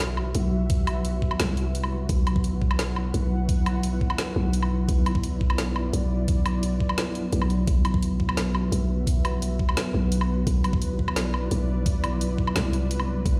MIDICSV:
0, 0, Header, 1, 5, 480
1, 0, Start_track
1, 0, Key_signature, 2, "minor"
1, 0, Tempo, 348837
1, 962, Time_signature, 4, 2, 24, 8
1, 18437, End_track
2, 0, Start_track
2, 0, Title_t, "Analog synth pad"
2, 0, Program_c, 0, 89
2, 0, Note_on_c, 0, 54, 85
2, 0, Note_on_c, 0, 59, 77
2, 0, Note_on_c, 0, 71, 82
2, 0, Note_on_c, 0, 76, 98
2, 2869, Note_off_c, 0, 76, 0
2, 2889, Note_on_c, 0, 78, 95
2, 6711, Note_off_c, 0, 78, 0
2, 6720, Note_on_c, 0, 74, 97
2, 10547, Note_off_c, 0, 74, 0
2, 10559, Note_on_c, 0, 76, 92
2, 14386, Note_off_c, 0, 76, 0
2, 14407, Note_on_c, 0, 74, 98
2, 18230, Note_off_c, 0, 74, 0
2, 18246, Note_on_c, 0, 76, 101
2, 18437, Note_off_c, 0, 54, 0
2, 18437, Note_off_c, 0, 59, 0
2, 18437, Note_off_c, 0, 71, 0
2, 18437, Note_off_c, 0, 76, 0
2, 18437, End_track
3, 0, Start_track
3, 0, Title_t, "Synth texture"
3, 0, Program_c, 1, 99
3, 0, Note_on_c, 1, 54, 87
3, 0, Note_on_c, 1, 66, 83
3, 2877, Note_on_c, 1, 64, 84
3, 2907, Note_off_c, 1, 66, 0
3, 10544, Note_off_c, 1, 54, 0
3, 10559, Note_on_c, 1, 66, 86
3, 10561, Note_on_c, 1, 54, 89
3, 10584, Note_off_c, 1, 64, 0
3, 14401, Note_on_c, 1, 64, 85
3, 14425, Note_off_c, 1, 66, 0
3, 18246, Note_on_c, 1, 66, 85
3, 18266, Note_off_c, 1, 64, 0
3, 18437, Note_off_c, 1, 54, 0
3, 18437, Note_off_c, 1, 66, 0
3, 18437, End_track
4, 0, Start_track
4, 0, Title_t, "808-style bass"
4, 0, Program_c, 2, 38
4, 0, Note_on_c, 2, 35, 94
4, 466, Note_off_c, 2, 35, 0
4, 482, Note_on_c, 2, 35, 94
4, 1903, Note_off_c, 2, 35, 0
4, 1922, Note_on_c, 2, 36, 100
4, 2863, Note_off_c, 2, 36, 0
4, 2880, Note_on_c, 2, 35, 98
4, 4302, Note_off_c, 2, 35, 0
4, 4321, Note_on_c, 2, 35, 93
4, 5742, Note_off_c, 2, 35, 0
4, 6000, Note_on_c, 2, 35, 102
4, 6702, Note_off_c, 2, 35, 0
4, 6723, Note_on_c, 2, 35, 97
4, 8144, Note_off_c, 2, 35, 0
4, 8163, Note_on_c, 2, 35, 97
4, 9584, Note_off_c, 2, 35, 0
4, 10081, Note_on_c, 2, 35, 96
4, 10543, Note_off_c, 2, 35, 0
4, 10561, Note_on_c, 2, 35, 93
4, 11983, Note_off_c, 2, 35, 0
4, 12000, Note_on_c, 2, 35, 94
4, 13422, Note_off_c, 2, 35, 0
4, 13681, Note_on_c, 2, 35, 96
4, 14382, Note_off_c, 2, 35, 0
4, 14403, Note_on_c, 2, 35, 99
4, 15824, Note_off_c, 2, 35, 0
4, 15844, Note_on_c, 2, 35, 93
4, 17264, Note_off_c, 2, 35, 0
4, 17282, Note_on_c, 2, 36, 104
4, 18223, Note_off_c, 2, 36, 0
4, 18241, Note_on_c, 2, 35, 96
4, 18437, Note_off_c, 2, 35, 0
4, 18437, End_track
5, 0, Start_track
5, 0, Title_t, "Drums"
5, 237, Note_on_c, 9, 77, 47
5, 375, Note_off_c, 9, 77, 0
5, 476, Note_on_c, 9, 42, 70
5, 614, Note_off_c, 9, 42, 0
5, 960, Note_on_c, 9, 42, 78
5, 962, Note_on_c, 9, 36, 123
5, 1097, Note_off_c, 9, 42, 0
5, 1100, Note_off_c, 9, 36, 0
5, 1200, Note_on_c, 9, 42, 37
5, 1200, Note_on_c, 9, 77, 76
5, 1338, Note_off_c, 9, 42, 0
5, 1338, Note_off_c, 9, 77, 0
5, 1440, Note_on_c, 9, 42, 66
5, 1578, Note_off_c, 9, 42, 0
5, 1681, Note_on_c, 9, 36, 63
5, 1802, Note_on_c, 9, 77, 73
5, 1819, Note_off_c, 9, 36, 0
5, 1920, Note_on_c, 9, 38, 122
5, 1920, Note_on_c, 9, 42, 77
5, 1940, Note_off_c, 9, 77, 0
5, 2058, Note_off_c, 9, 38, 0
5, 2058, Note_off_c, 9, 42, 0
5, 2163, Note_on_c, 9, 42, 34
5, 2301, Note_off_c, 9, 42, 0
5, 2406, Note_on_c, 9, 42, 68
5, 2526, Note_on_c, 9, 77, 61
5, 2544, Note_off_c, 9, 42, 0
5, 2663, Note_off_c, 9, 77, 0
5, 2878, Note_on_c, 9, 42, 74
5, 2880, Note_on_c, 9, 36, 120
5, 3016, Note_off_c, 9, 42, 0
5, 3018, Note_off_c, 9, 36, 0
5, 3121, Note_on_c, 9, 42, 35
5, 3121, Note_on_c, 9, 77, 74
5, 3245, Note_on_c, 9, 36, 99
5, 3258, Note_off_c, 9, 42, 0
5, 3258, Note_off_c, 9, 77, 0
5, 3358, Note_on_c, 9, 42, 65
5, 3382, Note_off_c, 9, 36, 0
5, 3496, Note_off_c, 9, 42, 0
5, 3600, Note_on_c, 9, 36, 63
5, 3725, Note_on_c, 9, 77, 79
5, 3737, Note_off_c, 9, 36, 0
5, 3839, Note_on_c, 9, 38, 114
5, 3839, Note_on_c, 9, 42, 74
5, 3863, Note_off_c, 9, 77, 0
5, 3977, Note_off_c, 9, 38, 0
5, 3977, Note_off_c, 9, 42, 0
5, 4078, Note_on_c, 9, 77, 47
5, 4216, Note_off_c, 9, 77, 0
5, 4322, Note_on_c, 9, 42, 64
5, 4460, Note_off_c, 9, 42, 0
5, 4800, Note_on_c, 9, 36, 116
5, 4800, Note_on_c, 9, 42, 76
5, 4938, Note_off_c, 9, 36, 0
5, 4938, Note_off_c, 9, 42, 0
5, 5041, Note_on_c, 9, 42, 36
5, 5041, Note_on_c, 9, 77, 79
5, 5178, Note_off_c, 9, 42, 0
5, 5178, Note_off_c, 9, 77, 0
5, 5275, Note_on_c, 9, 42, 64
5, 5413, Note_off_c, 9, 42, 0
5, 5521, Note_on_c, 9, 36, 62
5, 5641, Note_on_c, 9, 77, 78
5, 5658, Note_off_c, 9, 36, 0
5, 5757, Note_on_c, 9, 38, 110
5, 5757, Note_on_c, 9, 42, 72
5, 5779, Note_off_c, 9, 77, 0
5, 5895, Note_off_c, 9, 38, 0
5, 5895, Note_off_c, 9, 42, 0
5, 6239, Note_on_c, 9, 42, 64
5, 6365, Note_on_c, 9, 77, 62
5, 6377, Note_off_c, 9, 42, 0
5, 6502, Note_off_c, 9, 77, 0
5, 6722, Note_on_c, 9, 36, 117
5, 6723, Note_on_c, 9, 42, 78
5, 6860, Note_off_c, 9, 36, 0
5, 6861, Note_off_c, 9, 42, 0
5, 6967, Note_on_c, 9, 42, 37
5, 6967, Note_on_c, 9, 77, 80
5, 7088, Note_on_c, 9, 36, 101
5, 7104, Note_off_c, 9, 42, 0
5, 7104, Note_off_c, 9, 77, 0
5, 7204, Note_on_c, 9, 42, 65
5, 7225, Note_off_c, 9, 36, 0
5, 7341, Note_off_c, 9, 42, 0
5, 7443, Note_on_c, 9, 36, 60
5, 7567, Note_on_c, 9, 77, 78
5, 7581, Note_off_c, 9, 36, 0
5, 7683, Note_on_c, 9, 38, 109
5, 7683, Note_on_c, 9, 42, 75
5, 7705, Note_off_c, 9, 77, 0
5, 7821, Note_off_c, 9, 38, 0
5, 7821, Note_off_c, 9, 42, 0
5, 7923, Note_on_c, 9, 77, 52
5, 8060, Note_off_c, 9, 77, 0
5, 8166, Note_on_c, 9, 42, 68
5, 8304, Note_off_c, 9, 42, 0
5, 8643, Note_on_c, 9, 42, 80
5, 8644, Note_on_c, 9, 36, 116
5, 8780, Note_off_c, 9, 42, 0
5, 8782, Note_off_c, 9, 36, 0
5, 8884, Note_on_c, 9, 42, 37
5, 8884, Note_on_c, 9, 77, 82
5, 9021, Note_off_c, 9, 42, 0
5, 9021, Note_off_c, 9, 77, 0
5, 9122, Note_on_c, 9, 42, 68
5, 9260, Note_off_c, 9, 42, 0
5, 9363, Note_on_c, 9, 36, 62
5, 9485, Note_on_c, 9, 77, 82
5, 9501, Note_off_c, 9, 36, 0
5, 9602, Note_on_c, 9, 38, 117
5, 9602, Note_on_c, 9, 42, 77
5, 9623, Note_off_c, 9, 77, 0
5, 9740, Note_off_c, 9, 38, 0
5, 9740, Note_off_c, 9, 42, 0
5, 9841, Note_on_c, 9, 42, 37
5, 9979, Note_off_c, 9, 42, 0
5, 10079, Note_on_c, 9, 42, 68
5, 10204, Note_on_c, 9, 77, 63
5, 10217, Note_off_c, 9, 42, 0
5, 10321, Note_on_c, 9, 42, 37
5, 10342, Note_off_c, 9, 77, 0
5, 10458, Note_off_c, 9, 42, 0
5, 10560, Note_on_c, 9, 42, 83
5, 10561, Note_on_c, 9, 36, 126
5, 10698, Note_off_c, 9, 42, 0
5, 10699, Note_off_c, 9, 36, 0
5, 10800, Note_on_c, 9, 42, 39
5, 10800, Note_on_c, 9, 77, 84
5, 10926, Note_on_c, 9, 36, 107
5, 10938, Note_off_c, 9, 42, 0
5, 10938, Note_off_c, 9, 77, 0
5, 11043, Note_on_c, 9, 42, 68
5, 11063, Note_off_c, 9, 36, 0
5, 11180, Note_off_c, 9, 42, 0
5, 11281, Note_on_c, 9, 36, 65
5, 11405, Note_on_c, 9, 77, 82
5, 11419, Note_off_c, 9, 36, 0
5, 11521, Note_on_c, 9, 38, 120
5, 11521, Note_on_c, 9, 42, 80
5, 11542, Note_off_c, 9, 77, 0
5, 11659, Note_off_c, 9, 38, 0
5, 11659, Note_off_c, 9, 42, 0
5, 11760, Note_on_c, 9, 77, 55
5, 11897, Note_off_c, 9, 77, 0
5, 12004, Note_on_c, 9, 42, 70
5, 12141, Note_off_c, 9, 42, 0
5, 12480, Note_on_c, 9, 36, 122
5, 12484, Note_on_c, 9, 42, 87
5, 12618, Note_off_c, 9, 36, 0
5, 12622, Note_off_c, 9, 42, 0
5, 12726, Note_on_c, 9, 42, 38
5, 12726, Note_on_c, 9, 77, 82
5, 12863, Note_off_c, 9, 42, 0
5, 12863, Note_off_c, 9, 77, 0
5, 12964, Note_on_c, 9, 42, 69
5, 13102, Note_off_c, 9, 42, 0
5, 13201, Note_on_c, 9, 36, 68
5, 13330, Note_on_c, 9, 77, 84
5, 13339, Note_off_c, 9, 36, 0
5, 13444, Note_on_c, 9, 38, 125
5, 13444, Note_on_c, 9, 42, 84
5, 13467, Note_off_c, 9, 77, 0
5, 13582, Note_off_c, 9, 38, 0
5, 13582, Note_off_c, 9, 42, 0
5, 13922, Note_on_c, 9, 42, 76
5, 14051, Note_on_c, 9, 77, 63
5, 14060, Note_off_c, 9, 42, 0
5, 14189, Note_off_c, 9, 77, 0
5, 14404, Note_on_c, 9, 36, 123
5, 14404, Note_on_c, 9, 42, 83
5, 14542, Note_off_c, 9, 36, 0
5, 14542, Note_off_c, 9, 42, 0
5, 14645, Note_on_c, 9, 42, 38
5, 14645, Note_on_c, 9, 77, 77
5, 14768, Note_on_c, 9, 36, 115
5, 14783, Note_off_c, 9, 42, 0
5, 14783, Note_off_c, 9, 77, 0
5, 14883, Note_on_c, 9, 42, 65
5, 14905, Note_off_c, 9, 36, 0
5, 15021, Note_off_c, 9, 42, 0
5, 15123, Note_on_c, 9, 36, 67
5, 15246, Note_on_c, 9, 77, 77
5, 15260, Note_off_c, 9, 36, 0
5, 15360, Note_on_c, 9, 38, 126
5, 15360, Note_on_c, 9, 42, 81
5, 15384, Note_off_c, 9, 77, 0
5, 15498, Note_off_c, 9, 38, 0
5, 15498, Note_off_c, 9, 42, 0
5, 15602, Note_on_c, 9, 77, 53
5, 15740, Note_off_c, 9, 77, 0
5, 15841, Note_on_c, 9, 42, 69
5, 15978, Note_off_c, 9, 42, 0
5, 16319, Note_on_c, 9, 42, 79
5, 16321, Note_on_c, 9, 36, 122
5, 16457, Note_off_c, 9, 42, 0
5, 16459, Note_off_c, 9, 36, 0
5, 16563, Note_on_c, 9, 42, 36
5, 16563, Note_on_c, 9, 77, 77
5, 16700, Note_off_c, 9, 42, 0
5, 16700, Note_off_c, 9, 77, 0
5, 16802, Note_on_c, 9, 42, 67
5, 16940, Note_off_c, 9, 42, 0
5, 17041, Note_on_c, 9, 36, 63
5, 17165, Note_on_c, 9, 77, 74
5, 17179, Note_off_c, 9, 36, 0
5, 17278, Note_on_c, 9, 38, 119
5, 17278, Note_on_c, 9, 42, 74
5, 17302, Note_off_c, 9, 77, 0
5, 17416, Note_off_c, 9, 38, 0
5, 17416, Note_off_c, 9, 42, 0
5, 17521, Note_on_c, 9, 42, 34
5, 17659, Note_off_c, 9, 42, 0
5, 17761, Note_on_c, 9, 42, 69
5, 17882, Note_on_c, 9, 77, 60
5, 17899, Note_off_c, 9, 42, 0
5, 18020, Note_off_c, 9, 77, 0
5, 18241, Note_on_c, 9, 36, 116
5, 18242, Note_on_c, 9, 42, 74
5, 18378, Note_off_c, 9, 36, 0
5, 18379, Note_off_c, 9, 42, 0
5, 18437, End_track
0, 0, End_of_file